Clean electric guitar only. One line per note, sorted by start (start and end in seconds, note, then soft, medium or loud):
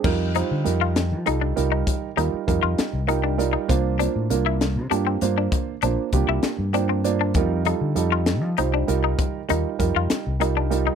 0.36 0.54 D#4 medium
0.81 0.99 F4 medium
1.27 1.36 D#4 medium
1.41 1.60 D4 medium
1.72 1.81 D#4 medium
2.17 2.36 D#4 medium
2.63 2.81 F4 medium
3.09 3.18 D#4 medium
3.24 3.42 D4 medium
3.53 3.63 D#4 medium
3.99 4.18 D4 medium
4.46 4.64 E4 medium
4.91 5.00 D4 medium
5.07 5.25 C4 medium
5.38 5.47 D4 medium
5.83 6.01 D4 medium
6.29 6.47 E4 medium
6.74 6.84 D4 medium
6.89 7.08 C4 medium
7.21 7.30 D4 medium
7.67 7.85 D#4 medium
8.12 8.31 F4 medium
8.58 8.67 D#4 medium
8.74 8.92 D4 medium
9.04 9.13 D#4 medium
9.50 9.68 D#4 medium
9.96 10.14 F4 medium
10.41 10.50 D#4 medium
10.57 10.75 D4 medium
10.87 10.95 D#4 medium